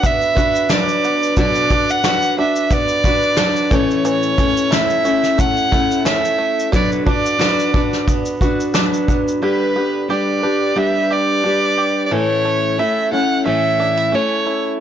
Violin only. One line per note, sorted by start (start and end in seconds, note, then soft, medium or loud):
0.05 0.74 E5 loud
0.72 1.38 D5 medium
1.39 1.92 D5 loud
1.91 2.39 F#5 loud
2.40 2.75 E5 medium
2.73 3.76 D5 loud
3.74 4.07 C#5 medium
4.08 4.75 C#5 loud
4.74 5.42 E5 loud
5.40 6.07 F#5 loud
6.07 6.70 E5 medium
6.75 6.90 D5 medium
7.08 8.04 D5 medium
9.44 10.06 B4 medium
10.10 10.79 D5 medium
10.78 11.14 E5 loud
11.12 12.06 D5 loud
12.06 12.14 D5 medium
12.12 12.81 C#5 loud
12.79 13.12 E5 medium
13.13 13.44 F#5 medium
13.46 14.16 E5 loud
14.15 14.66 C#5 medium